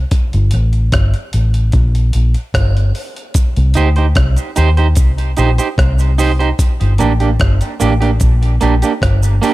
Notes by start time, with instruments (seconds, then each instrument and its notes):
0.11 kick, closed hi-hat
0.33 fingered electric bass G1, closed hi-hat
0.51 fingered electric bass A1, closed hi-hat
0.73 closed hi-hat
0.92 fingered electric bass G1, kick, cross-stick, closed hi-hat
1.14 closed hi-hat
1.33 fingered electric bass A1, closed hi-hat
1.54 closed hi-hat
1.72 fingered electric bass A#1, kick, closed hi-hat
1.95 closed hi-hat
2.13 fingered electric bass A#1, closed hi-hat
2.34 closed hi-hat
2.54 fingered electric bass G1, kick, cross-stick, closed hi-hat
2.77 closed hi-hat
2.95 open hi-hat
3.16 closed hi-hat
3.34 kick, closed hi-hat, cabasa
3.56 fingered electric bass C2, closed hi-hat
3.74 fingered electric bass D2, clean electric guitar D#4 G4 C5, closed hi-hat, cabasa
3.96 clean electric guitar D#4 G4 C5, closed hi-hat
4.15 fingered electric bass C2, kick, cross-stick, closed hi-hat
4.36 closed hi-hat, cabasa
4.56 fingered electric bass D#2, clean electric guitar D#4 G4 C5, closed hi-hat, cabasa
4.77 clean electric guitar D#4 G4 C5, closed hi-hat
4.95 fingered electric bass C2, kick, closed hi-hat, cabasa
5.18 closed hi-hat
5.37 fingered electric bass A#1, clean electric guitar D#4 G4 C5, closed hi-hat, cabasa
5.58 clean electric guitar D#4 G4 C5, closed hi-hat, cabasa
5.78 fingered electric bass C2, kick, cross-stick, closed hi-hat
5.99 closed hi-hat, cabasa
6.18 clean electric guitar D#4 G4 C5, open hi-hat, cabasa
6.39 clean electric guitar D#4 G4 C5, closed hi-hat
6.59 kick, closed hi-hat, cabasa
6.81 fingered electric bass G1, closed hi-hat
6.98 fingered electric bass A1, clean electric guitar A#3 D4 G4, closed hi-hat, cabasa
7.20 clean electric guitar A#3 D4 G4, closed hi-hat
7.40 fingered electric bass G1, kick, cross-stick, closed hi-hat
7.61 closed hi-hat, cabasa
7.80 fingered electric bass A1, clean electric guitar A#3 D4 G4, closed hi-hat, cabasa
8.01 clean electric guitar A#3 D4 G4, closed hi-hat
8.20 fingered electric bass A#1, kick, closed hi-hat, cabasa
8.43 closed hi-hat
8.61 fingered electric bass A#1, clean electric guitar A#3 D4 G4, closed hi-hat, cabasa
8.82 clean electric guitar A#3 D4 G4, closed hi-hat, cabasa
9.02 fingered electric bass G1, kick, cross-stick, closed hi-hat
9.23 closed hi-hat, cabasa
9.42 clean electric guitar A#3 D4 G4, open hi-hat, cabasa